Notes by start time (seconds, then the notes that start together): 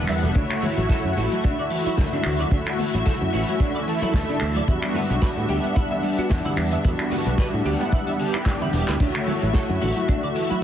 Already playing: G3 B3 D4 E5 F#5
0.07 E2 G3 E5, finger snap, open hi-hat, muted conga, shaker
0.23 E1 B3 A4, closed hi-hat, low conga, shaker
0.35 D2 C#3 A3 D4 E4 F#4 C#5, kick, closed hi-hat, shaker
0.50 D3, finger snap
0.62 E3 A3, open hi-hat, high conga, low conga, shaker
0.77 A1 F#3, closed hi-hat, muted conga, shaker
0.89 C#3 A4, kick, snare, closed hi-hat, shaker
1.04 F#2 D3
1.16 A1 E3 A3 E4 F#4, open hi-hat, muted conga, shaker
1.31 F#3, closed hi-hat, high conga, shaker
1.43 C#3 D4, kick, closed hi-hat, shaker
1.59 D3 D5
1.70 E3, open hi-hat, muted conga, shaker
1.85 F#3 E4, muted fingered electric bass stroke, closed hi-hat, shaker
1.97 D2 C#3, kick, snare, closed hi-hat, high conga, shaker
2.12 D3 D4, closed hi-hat, muted conga, low conga
2.24 D2 E3, finger snap, open hi-hat, shaker
2.39 F#3 D5, closed hi-hat, low conga, shaker
2.51 D2 C#3 A3 D4 E4 F#4, kick, closed hi-hat, shaker
2.67 D3, finger snap, muted conga
2.79 E3 A3, open hi-hat, high conga, low conga, shaker
2.94 A1 F#3, closed hi-hat, shaker
3.06 C#3 A4, kick, snare, closed hi-hat, muted conga, shaker
3.21 F#2 D3
3.33 A1 E3 A3 C#4 E4 F#4, open hi-hat, shaker
3.48 F#3, closed hi-hat, high conga, shaker
3.59 C#3 D4, kick, closed hi-hat, muted conga, shaker
3.75 D3 D5
3.87 E3 A3 E4 A4, open hi-hat, shaker
4.02 F#3 E4, muted fingered electric bass stroke, closed hi-hat, muted conga, shaker
4.14 D2 C#3, kick, snare, closed hi-hat, high conga, shaker
4.29 D3 D4, closed hi-hat, low conga
4.40 D2 E3, finger snap, open hi-hat, shaker
4.56 F#3 D5, closed hi-hat, muted conga, low conga, shaker
4.67 E2 D3 G3 B3 D4 E4 F#4, kick, closed hi-hat, shaker
4.83 E3, finger snap
4.94 G3 B3, open hi-hat, muted conga, high conga, low conga, shaker
5.10 B1 B3, closed hi-hat, shaker
5.22 D3 B4, kick, snare, closed hi-hat, shaker
5.37 A2 E3
5.48 D2 G3 B3 D4 G4 F#5, open hi-hat, muted conga, shaker
5.64 B3, closed hi-hat, high conga, shaker
5.76 D3 E4, kick, closed hi-hat, shaker
5.91 E3 E5, muted conga
6.03 G3, open hi-hat, shaker
6.18 B3 F#4, muted fingered electric bass stroke, closed hi-hat, shaker
6.30 E2 D3, kick, snare, closed hi-hat, high conga, shaker
6.45 E3 E4, closed hi-hat, muted conga, low conga
6.56 E2 G3, finger snap, open hi-hat, shaker
6.72 B3 E5, closed hi-hat, low conga, shaker
6.83 E2 D3 G3 B3 D4 E4 F#4, kick, closed hi-hat, muted conga, shaker
6.99 E3, finger snap, closed hi-hat
7.11 G3 B3, open hi-hat, high conga, low conga, shaker
7.26 B1 B3, closed hi-hat, shaker
7.38 D3 B4, kick, snare, closed hi-hat, muted conga, shaker
7.53 A2 E3
7.65 D2 G3 B3 D4 G4 F#5, open hi-hat, shaker
7.80 B3, closed hi-hat, muted conga, high conga, shaker
7.92 D3 E4, kick, closed hi-hat, shaker
8.07 E3 E5, closed hi-hat
8.18 D3 G3 B3 D4 G4, open hi-hat, shaker
8.34 E4, finger snap, closed hi-hat, muted conga, shaker
8.46 B3, kick, snare, clap, closed hi-hat, high conga, shaker
8.61 E3 E4, closed hi-hat, low conga
8.73 E1 B3, open hi-hat, muted conga, shaker
8.88 D2 E4 B4, clap, closed hi-hat, low conga, shaker
8.99 D2 C#3 A3 D4 E4 F#4 C#5 E5, kick, closed hi-hat, crash, shaker
9.15 D3, finger snap
9.27 E3 A3, open hi-hat, high conga, low conga, shaker
9.42 A1 F#3, closed hi-hat, muted conga, shaker
9.54 C#3 A4, kick, snare, closed hi-hat, shaker
9.69 F#2 D3
9.81 A1 D3 A3 E4 F#4, open hi-hat, muted conga, shaker
9.96 F#3, closed hi-hat, high conga, shaker
10.08 C#3 D4, kick, closed hi-hat, shaker
10.23 D3 D5
10.35 E3, open hi-hat, muted conga, shaker
10.50 F#3 E4, muted fingered electric bass stroke, closed hi-hat, shaker